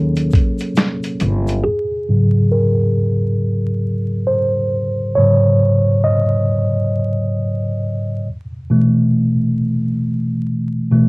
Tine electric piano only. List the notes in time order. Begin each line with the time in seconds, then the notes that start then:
Already playing: F#3 A#3 C#4 G#4
1.64 G#4
2.09 G#2 C#3 F#3
2.52 A#4
4.27 C5
5.15 G#2 C#3 F#3 C#5
6.04 D#5
8.70 B2 E3 A3
10.91 B2 E3 A3